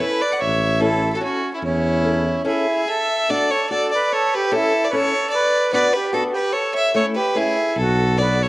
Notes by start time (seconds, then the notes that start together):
0.00 C#4 E4 A4 B4
0.20 B4 D5
0.31 D5 F#5
0.39 A1 C#5 E5
0.80 C#4 E4 A4
1.13 F#4 A4
1.21 C#4 E4 F#4 A4
1.54 C#4 E4
1.62 E2 C#4 E4
2.03 C#4 E4 A4
2.45 C#4 E4 G#4 A4
2.88 A4 E5
3.30 D4 F#4 A4 D5
3.51 A4 C#5
3.70 D4 F#4 A4 D5
3.91 D5
3.95 B4
4.12 A4 C#5
4.34 G4 B4
4.51 C#4 E4 A4
4.56 E4
4.84 D5
4.90 C#4 E4 A4 B4 C#5
4.96 A4
5.30 D5
5.34 B4
5.73 B3 D4 F#4 B4 D5
5.93 G4 B4
6.12 B3 D4 F#4 A4
6.33 G4 B4
6.52 A4 C#5
6.74 C#5 E5
6.95 A3 C#4 E4 A4 C#5
7.15 G4 B4
7.35 A3 C#4 E4 G#4
7.77 B1 A4
7.82 F#4
8.17 B3 D4 F#4 D5
8.22 B4
8.41 A4 C#5